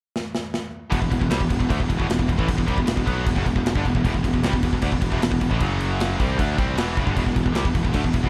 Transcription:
0.16 snare
0.35 snare
0.54 snare
0.91 picked electric bass E1, distorted electric guitar E2 B2, kick, crash
1.01 picked electric bass E1, distorted electric guitar E2 B2, kick
1.10 picked electric bass E1, distorted electric guitar E2 B2, kick, crash
1.19 picked electric bass E1, distorted electric guitar E2 B2, kick
1.30 picked electric bass C2, distorted electric guitar C3 G3, snare, crash
1.40 picked electric bass E1, distorted electric guitar E2 B2, kick
1.49 picked electric bass E1, distorted electric guitar E2 B2, kick, crash
1.60 picked electric bass E1, distorted electric guitar E2 B2, kick
1.70 picked electric bass D2, distorted electric guitar D3 A3, kick, crash
1.80 picked electric bass E1, distorted electric guitar E2 B2, kick
1.89 picked electric bass E1, distorted electric guitar E2 B2, kick, crash
1.98 picked electric bass E1, distorted electric guitar E2 B2, kick
2.09 picked electric bass E1, distorted electric guitar E2 B2, snare, crash
2.19 picked electric bass E1, distorted electric guitar E2 B2, kick
2.28 picked electric bass E1, distorted electric guitar E2 B2, kick, crash
2.38 picked electric bass A1, distorted electric guitar A2 E3, kick
2.48 picked electric bass E1, distorted electric guitar E2 B2, kick, crash
2.57 picked electric bass E1, distorted electric guitar E2 B2, kick
2.67 picked electric bass C2, distorted electric guitar C3 G3, kick, crash
2.76 picked electric bass E1, distorted electric guitar E2 B2, kick
2.85 picked electric bass E1, distorted electric guitar E2 B2, snare, crash
2.97 picked electric bass E1, distorted electric guitar E2 B2, kick
3.06 picked electric bass B1, distorted electric guitar B2 F#3 B3, kick, crash
3.26 picked electric bass E1, distorted electric guitar E2 B2, kick, crash
3.36 picked electric bass F#1, distorted electric guitar F#2 C#3, kick
3.46 picked electric bass E1, distorted electric guitar E2 B2, kick, crash
3.55 picked electric bass E1, distorted electric guitar E2 B2, kick
3.66 picked electric bass E1, distorted electric guitar E2 B2, snare, crash
3.75 picked electric bass G1, distorted electric guitar G2 D3, kick
3.85 picked electric bass E1, distorted electric guitar E2 B2, kick, crash
3.95 picked electric bass E1, distorted electric guitar E2 B2, kick
4.04 picked electric bass E1, distorted electric guitar E2 B2, kick, crash
4.13 picked electric bass E1, distorted electric guitar E2 B2, kick
4.23 picked electric bass E1, distorted electric guitar E2 B2, kick, crash
4.33 picked electric bass E1, distorted electric guitar E2 B2, kick
4.43 picked electric bass C2, distorted electric guitar C3 G3, snare, crash
4.53 picked electric bass E1, distorted electric guitar E2 B2, kick
4.63 picked electric bass E1, distorted electric guitar E2 B2, kick, crash
4.73 picked electric bass E1, distorted electric guitar E2 B2, kick
4.82 picked electric bass D2, distorted electric guitar D3 A3, kick, crash
4.92 picked electric bass E1, distorted electric guitar E2 B2, kick
5.01 picked electric bass E1, distorted electric guitar E2 B2, kick, crash
5.11 picked electric bass E1, distorted electric guitar E2 B2, kick
5.22 picked electric bass E1, distorted electric guitar E2 B2, snare, crash
5.30 picked electric bass E1, distorted electric guitar E2 B2, kick
5.41 picked electric bass E1, distorted electric guitar E2 B2, kick, crash
5.51 picked electric bass A1, distorted electric guitar A2 E3, kick
5.60 picked electric bass F#1, distorted electric guitar F#2 C#3 F#3, kick, crash
5.80 crash
6.00 snare, crash
6.19 picked electric bass C2, distorted electric guitar C3 G3 C4, kick, crash
6.38 picked electric bass D2, distorted electric guitar D3 A3 D4, kick, crash
6.57 picked electric bass C2, distorted electric guitar C3 G3 C4, kick, crash
6.76 picked electric bass E1, distorted electric guitar E2 B2 E3, snare, crash
6.95 picked electric bass F#1, distorted electric guitar F#2 C#3, kick, crash
7.03 picked electric bass G1, distorted electric guitar G2 D3, kick
7.14 picked electric bass E1, distorted electric guitar E2 B2, kick, crash
7.24 picked electric bass E1, distorted electric guitar E2 B2, kick, snare
7.28 distorted electric guitar E2
7.34 picked electric bass E1, distorted electric guitar E2 B2, kick, crash
7.43 picked electric bass E1, distorted electric guitar E2 B2, kick
7.52 picked electric bass C2, distorted electric guitar C3 G3, snare, crash
7.64 picked electric bass E1, distorted electric guitar E2 B2, kick
7.73 picked electric bass E1, distorted electric guitar E2 B2, kick, crash
7.83 picked electric bass E1, distorted electric guitar E2 B2, kick
7.93 picked electric bass D2, distorted electric guitar D3 A3, kick, crash
8.03 picked electric bass E1, distorted electric guitar E2 B2, kick
8.13 picked electric bass E1, distorted electric guitar E2 B2, kick, crash
8.23 picked electric bass E1, distorted electric guitar E2 B2, kick

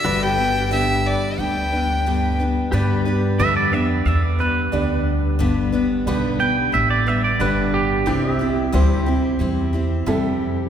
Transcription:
Already playing: fiddle E5
0.04 upright bass G1, steel-string acoustic guitar G2 D3 G3 B3 D4 B4, pedal steel guitar F#4 B4 D5
0.22 pedal steel guitar G4, fiddle G5
0.38 steel-string acoustic guitar G3 B3 D4 B4
0.71 steel-string acoustic guitar G2 D3 G3 B3 D4 B4, fiddle E5
1.06 fiddle D5
1.38 upright bass D2, steel-string acoustic guitar G3 B3 D4 B4, fiddle G5
1.72 steel-string acoustic guitar G3 B3 D4 B4
2.06 steel-string acoustic guitar G2 D3 G3 B3 D4 B4
2.40 steel-string acoustic guitar G3 B3 D4 B4
2.72 steel-string acoustic guitar G2 D3 G3 B3 D4 B4, upright bass G2, pedal steel guitar G4 B4 D5
3.05 steel-string acoustic guitar G3 B3 D4 B4
3.39 upright bass F2, steel-string acoustic guitar G2 D3 G3 B3 D4 B4, grand piano D4 G4 B4, clean electric guitar E5
3.57 clean electric guitar D5
3.72 steel-string acoustic guitar G3 B3 D4 B4, clean electric guitar E5
3.90 clean electric guitar D5
4.06 upright bass E2, steel-string acoustic guitar G3 B3 D4 B4, clean electric guitar E5
4.23 clean electric guitar D5
4.39 steel-string acoustic guitar G3 B3 D4 B4, clean electric guitar B4
4.72 upright bass D2, steel-string acoustic guitar G2 D3 G3 B3 D4 B4, grand piano D4 G4 D5
5.39 upright bass G1, steel-string acoustic guitar G2 D3 G3 B3 D4 B4
5.72 steel-string acoustic guitar G3 B3 D4 B4
6.06 upright bass B1, steel-string acoustic guitar G2 D3 G3 B3 D4 B4, grand piano D4 G4 B4
6.39 steel-string acoustic guitar G3 B3 D4 B4, clean electric guitar G5
6.72 upright bass A1, steel-string acoustic guitar G3 B3 D4 B4, clean electric guitar E5
6.90 clean electric guitar D5
7.07 steel-string acoustic guitar G3 B3 D4 B4, clean electric guitar E5
7.24 clean electric guitar D5
7.39 upright bass G1, steel-string acoustic guitar G2 D3 G3 B3 D4 B4, grand piano D4 G4 B4, clean electric guitar B4
7.74 clean electric guitar G4
8.06 upright bass C2, steel-string acoustic guitar C3 G3 C4 E4 G4, pedal steel guitar C4 G4 D5
8.34 pedal steel guitar E5
8.39 steel-string acoustic guitar C4 E4 G4
8.72 upright bass D2, steel-string acoustic guitar C3 G3 C4 E4 G4, grand piano E4 G4 C5
9.06 steel-string acoustic guitar C4 E4 G4
9.39 upright bass E2, steel-string acoustic guitar G3 C4 E4 G4
9.73 steel-string acoustic guitar C4 E4 G4
10.06 upright bass F2, steel-string acoustic guitar C3 G3 C4 E4 G4, grand piano E4 G4 A4

